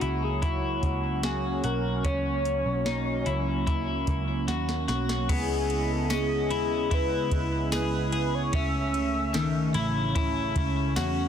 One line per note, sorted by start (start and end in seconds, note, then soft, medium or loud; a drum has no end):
0.00 0.79 C#2 medium
0.00 5.25 F#3 medium
0.00 5.25 A#3 medium
0.00 5.25 C#4 medium
0.00 0.41 E4 medium
0.00 0.25 F#4 medium
0.00 closed hi-hat soft
0.24 0.45 G#4 medium
0.42 1.23 E4 medium
0.42 1.26 F#4 medium
0.42 kick medium
0.42 closed hi-hat medium
0.83 1.60 C#2 medium
0.83 kick medium
0.83 closed hi-hat soft
1.23 1.63 F#4 medium
1.23 1.67 G#4 medium
1.23 snare loud
1.23 closed hi-hat medium
1.64 2.03 B1 medium
1.64 2.05 F#4 medium
1.64 2.05 A#4 medium
1.64 closed hi-hat medium
2.05 2.62 C#2 loud
2.05 2.86 C#4 medium
2.05 4.44 C#5 loud
2.05 kick loud
2.05 closed hi-hat medium
2.45 closed hi-hat soft
2.66 3.23 B1 medium
2.86 3.26 D#4 medium
2.86 snare loud
2.86 closed hi-hat medium
3.26 4.03 C#2 medium
3.26 3.66 E4 medium
3.26 closed hi-hat soft
3.67 4.47 E4 medium
3.67 kick medium
3.67 closed hi-hat medium
4.07 4.46 C#2 medium
4.07 kick medium
4.07 closed hi-hat soft
4.48 4.86 D#2 medium
4.48 4.87 F#4 medium
4.48 snare soft
4.48 closed hi-hat medium
4.69 snare medium
4.88 5.27 B1 medium
4.88 5.29 F#4 medium
4.88 snare medium
4.88 closed hi-hat medium
5.09 snare medium
5.29 6.51 C#2 loud
5.29 8.50 C#3 medium
5.29 8.50 G#3 medium
5.29 6.10 B3 medium
5.29 8.50 B3 medium
5.29 8.50 E4 medium
5.29 5.93 G#4 loud
5.29 8.50 D#5 medium
5.29 kick loud
5.29 crash medium
5.29 ride medium
5.70 ride soft
5.92 6.05 A4 medium
6.05 6.14 A4 medium
6.10 6.51 C#4 medium
6.10 6.92 G#4 loud
6.10 snare loud
6.10 ride soft
6.10 tambourine medium
6.50 7.28 D#2 medium
6.50 6.90 E4 medium
6.50 ride soft
6.91 7.72 E4 medium
6.91 7.70 B4 loud
6.91 kick loud
6.91 ride medium
7.32 8.49 C#2 loud
7.32 kick medium
7.32 ride soft
7.72 8.11 G#4 medium
7.72 8.36 B4 loud
7.72 snare loud
7.72 ride medium
7.72 tambourine medium
8.12 8.53 G#4 medium
8.12 ride soft
8.35 8.56 C#5 loud
8.53 9.71 C#2 medium
8.53 11.28 C#3 medium
8.53 11.28 A3 medium
8.53 9.34 C#4 medium
8.53 11.28 C#4 medium
8.53 10.16 E5 loud
8.53 kick loud
8.53 ride medium
8.94 ride soft
9.34 9.75 D#3 medium
9.34 snare loud
9.34 ride medium
9.34 tambourine medium
9.74 10.52 A1 medium
9.74 10.14 E4 medium
9.74 ride soft
10.15 10.96 E4 loud
10.15 kick loud
10.15 ride medium
10.56 10.94 C#2 loud
10.56 kick medium
10.56 ride soft
10.96 11.28 E2 medium
10.96 11.28 F#4 medium
10.96 snare loud
10.96 ride medium
10.96 tambourine medium